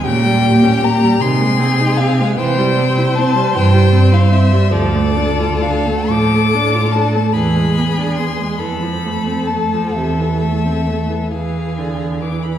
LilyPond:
<<
  \new Staff \with { instrumentName = "Violin" } { \time 6/8 \key aes \major \tempo 4. = 48 g''4 bes''8 c'''4 f''8 | \key d \dorian g''4 a''8 g''8. f''16 e''8 | d''4 f''8 d'''4 a''8 | b''4 c'''8 b''4 a''8 |
e''4. f''4 d'''16 b''16 | }
  \new Staff \with { instrumentName = "Violin" } { \time 6/8 \key aes \major g'4. aes'4. | \key d \dorian c''2. | a'2. | gis'4. a'4.~ |
a'4. gis'4~ gis'16 r16 | }
  \new Staff \with { instrumentName = "Viola" } { \time 6/8 \key aes \major des16 g16 bes16 des'16 bes16 g16 ees16 aes16 c'16 ees'16 c'16 aes16 | \key d \dorian e16 g16 c'16 e'16 c'16 g16 e16 g16 c'16 e'16 c'16 g16 | f16 a16 d'16 f'16 d'16 a16 f16 a16 d'16 f'16 d'16 a16 | e16 gis16 b16 d'16 b16 gis16 e16 f16 a16 c'16 a16 f16 |
c16 e16 a16 c'16 a16 e16 e8 d8 e8 | }
  \new Staff \with { instrumentName = "Cello" } { \clef bass \time 6/8 \key aes \major bes,4. c4. | \key d \dorian c4. g,4. | d,4. a,4. | e,4. f,4. |
e,4. e,4. | }
>>